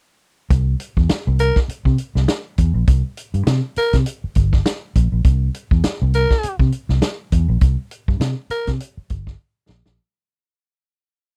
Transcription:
0.50 fingered electric bass C2, kick, closed hi-hat
0.80 closed hi-hat
0.97 fingered electric bass E2, kick
1.09 muted fingered electric bass stroke, snare, closed hi-hat
1.27 fingered electric bass C2
1.39 tenor saxophone A#4, closed hi-hat
1.56 kick, snare
1.68 muted fingered electric bass stroke, closed hi-hat
1.85 fingered electric bass C3, kick
1.98 closed hi-hat
2.15 fingered electric bass C2, snare
2.28 snare, closed hi-hat
2.58 fingered electric bass E2, kick, closed hi-hat
2.74 fingered electric bass A#1
2.87 fingered electric bass C2, kick, closed hi-hat
3.17 closed hi-hat
3.34 fingered electric bass G2, closed hi-hat
3.47 fingered electric bass C3, snare, closed hi-hat
3.76 tenor saxophone A#4, muted fingered electric bass stroke, closed hi-hat
3.93 fingered electric bass C3, kick, snare, closed hi-hat
4.06 closed hi-hat
4.24 muted fingered electric bass stroke
4.35 fingered electric bass G1, kick, closed hi-hat
4.52 kick, snare
4.66 snare, closed hi-hat
4.95 fingered electric bass A#1, kick, closed hi-hat
5.12 fingered electric bass A#1
5.24 fingered electric bass C2, kick, closed hi-hat
5.54 closed hi-hat
5.71 fingered electric bass E2, kick
5.84 muted fingered electric bass stroke, snare, closed hi-hat
6.02 fingered electric bass C2
6.14 tenor saxophone A#4, closed hi-hat
6.30 kick, snare
6.43 muted fingered electric bass stroke, closed hi-hat
6.59 fingered electric bass C3, kick
6.72 closed hi-hat
6.89 fingered electric bass C2, snare
7.02 snare, closed hi-hat
7.32 fingered electric bass E2, kick, closed hi-hat
7.48 fingered electric bass A#1
7.61 fingered electric bass C2, kick, closed hi-hat
7.91 closed hi-hat
8.08 fingered electric bass G2, kick
8.20 fingered electric bass C3, snare, closed hi-hat
8.50 tenor saxophone A#4, muted fingered electric bass stroke, closed hi-hat
8.67 fingered electric bass C3, kick, snare, closed hi-hat
8.80 closed hi-hat
8.97 muted fingered electric bass stroke
9.10 fingered electric bass G1, kick, closed hi-hat
9.27 kick, snare
9.69 fingered electric bass A#1, snare
9.86 fingered electric bass A#1, snare

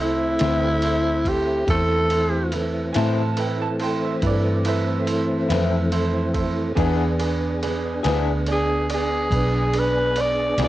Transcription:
Already playing: fingered electric bass C2, tonewheel organ A3 C4 E4
0.00 grand piano E4 A4 C5, tenor saxophone E4
0.39 fingered electric bass D2, clean electric guitar E3 C4 E4, grand piano E4 A4 C5, snare, ride
0.44 clean electric guitar A2
0.82 grand piano E4 A4 C5, ride
1.25 grand piano E4 A4 C5, tenor saxophone G4, kick, ride
1.66 fingered electric bass E2, tonewheel organ E3 A3 C4, grand piano E4 A4 C5, tenor saxophone A4, kick, ride
2.10 grand piano E4 A4 C5, ride
2.52 grand piano E4 A4 B4, snare, ride
2.93 fingered electric bass A2, clean electric guitar E3 C4 E4, grand piano E4 A4 C5, upright piano G#5, snare, ride
2.97 clean electric guitar A2, upright piano A5
3.37 grand piano E4 A4 B4, upright piano G5, ride
3.62 upright piano A5
3.79 grand piano E4 A4 C5, upright piano G5, ride
4.04 upright piano E5
4.22 fingered electric bass G2, grand piano E4 A4 B4, kick, snare, ride
4.26 upright piano D5
4.65 grand piano E4 A4 B4, upright piano C5 E5, ride
5.07 grand piano E4 A4 C5, ride
5.49 fingered electric bass F2, clean electric guitar A2 E3 C4 E4, grand piano E4 A4 B4, snare, ride
5.92 grand piano E4 A4 C5, ride
6.34 grand piano E4 A4 C5, kick, ride
6.75 fingered electric bass E2, clean electric guitar E3 B3 D4 G#4, tonewheel organ B3 D4 G#4, grand piano D4 G#4 B4, kick, ride
7.19 grand piano D4 G#4 B4, ride
7.62 grand piano D4 G#4 B4, snare, ride
8.03 fingered electric bass D2, clean electric guitar E3 B3 D4 G#4, grand piano D4 G#4 B4, snare, ride
8.47 grand piano D4 G#4 D5, ride
8.52 tenor saxophone G#4
8.90 grand piano D4 G#4 D5, ride
8.94 tenor saxophone G#4
9.31 fingered electric bass B1, grand piano D4 G#4 B4, kick, ride
9.74 grand piano D4 G#4 B4, ride
9.79 tenor saxophone B4
10.16 grand piano D4 G#4 D5, ride
10.21 tenor saxophone D5
10.58 fingered electric bass C2, clean electric guitar E3 B3 D4 G#4, grand piano D4 G#4 B4, snare, ride
10.64 tenor saxophone D5

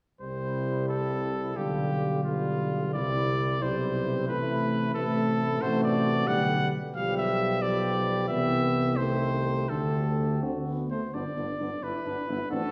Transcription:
0.21 tuba C2, trombone C3, french horn G3, flugelhorn E4, trumpet C5
0.89 trumpet A4
1.56 tuba B1, trombone D3, french horn G3, flugelhorn F4, trumpet G4
2.23 trombone D3, french horn G3, trumpet F4, flugelhorn F4
2.94 tuba C2, trombone C3, french horn G3, flugelhorn E4, trumpet D5
3.62 tuba B1, trombone C3, french horn G3, flugelhorn E4, trumpet C5
4.28 tuba A1, trombone C3, french horn A3, flugelhorn E4, trumpet B4
4.94 trombone C3, french horn A3, flugelhorn E4, trumpet A4
5.61 tuba A1, trombone C3, french horn A3, flugelhorn F#4, trumpet C5
5.84 trumpet D5
6.27 tuba B1, trombone D3, french horn G3, flugelhorn G4, trumpet F#5
6.95 tuba B1, trombone F3, french horn G3, flugelhorn G4, trumpet F5
7.17 trumpet E5
7.62 trombone F3, french horn G3, flugelhorn G4, trumpet D5
8.28 tuba C2, trombone E3, french horn B3, flugelhorn G4, trumpet E5
8.97 trombone D#3, french horn A3, flugelhorn G4, trumpet C5
9.68 tuba D2, trombone D3, french horn A3, flugelhorn G4, trumpet A4
10.42 trombone D3, french horn C4, flugelhorn F#4
10.67 french horn B3
10.91 french horn A3, trumpet C5
11.14 tuba G1, trombone B3, french horn D4, trumpet D5
11.37 tuba G1, trombone B3, french horn D4
11.59 tuba G1, trombone B3, french horn D4
11.82 tuba G1, trombone B3, french horn D4, flugelhorn E4, trumpet B4
12.05 tuba G1, trombone B3, flugelhorn D4, french horn D4
12.28 tuba G1, trombone B3, french horn D4, flugelhorn E4
12.51 tuba A1, trombone C4, french horn D4, flugelhorn F#4, trumpet A4

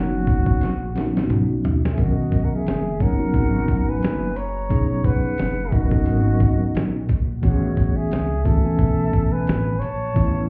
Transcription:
Already playing: upright bass F#1, tine electric piano F#3 B3 C#4 D#4 C#5, flugelhorn F#4
0.27 kick, closed hi-hat
0.46 kick
0.61 upright bass A#1, snare, closed hi-hat
0.95 tine electric piano F#3 B3 C#4 D#4 F#4, snare, closed hi-hat
1.17 snare
1.30 upright bass B1, closed hi-hat, mid tom
1.65 closed hi-hat, floor tom
1.85 snare
1.91 flugelhorn G#4, flute E5
1.98 upright bass B1, tine electric piano D#3 F#3 B3 C#4 A#4, flugelhorn F#4, flute D#5, kick, closed hi-hat
2.32 kick, closed hi-hat
2.44 flugelhorn A#4, flute F#5
2.52 flugelhorn G#4, flute E5, muted upright bass stroke
2.66 upright bass F#1, snare, closed hi-hat
2.99 tine electric piano F#3 B3 C#4 D#4 C#5, flugelhorn A#4, flute F#5, kick, closed hi-hat
3.18 tine electric piano F#3 B3 C#4 D#4 F#4
3.34 upright bass G#1, kick, closed hi-hat
3.68 kick, closed hi-hat
3.89 flugelhorn B4, flute G#5
4.02 upright bass F#1, snare, closed hi-hat
4.36 flugelhorn C#5, flute A#5, closed hi-hat
4.69 upright bass B1, tine electric piano F#3 B3 C#4 D#4 G#4, kick, closed hi-hat
5.04 flugelhorn B4, flute F#5, kick, closed hi-hat
5.25 muted upright bass stroke
5.38 upright bass F#1, snare, closed hi-hat
5.72 tine electric piano F#3 B3 C#4 D#4 A#4, flugelhorn F#4, flute D#5, kick, closed hi-hat
5.91 tine electric piano F#3 B3 C#4 D#4 A4, kick
5.99 tine electric piano A#4
6.06 upright bass G#1, closed hi-hat
6.40 kick, closed hi-hat
6.61 muted upright bass stroke
6.75 upright bass A#1, snare, closed hi-hat
7.09 upright bass A#1, kick, closed hi-hat
7.42 upright bass A1, tine electric piano E3 A3 B3 C#4 F#4, flugelhorn F#4, flute C#5, kick, closed hi-hat
7.50 tine electric piano G#4
7.77 kick, closed hi-hat
7.96 flugelhorn G#4, flute E5, muted upright bass stroke
8.11 upright bass C#2, snare, closed hi-hat
8.44 tine electric piano E3 A3 B3 C#4 F#4, flugelhorn A4, flute E5, kick, closed hi-hat
8.64 tine electric piano E3 A3 B3 C#4 G#5, muted upright bass stroke
8.79 upright bass B1, kick, closed hi-hat
9.13 kick, closed hi-hat
9.32 flugelhorn B4, flute G#5
9.47 upright bass A1, snare, closed hi-hat
9.79 upright bass A#1, flugelhorn C#5, flute A5, closed hi-hat
10.14 upright bass A1, tine electric piano E3 A3 B3 C#4 E4, kick, closed hi-hat

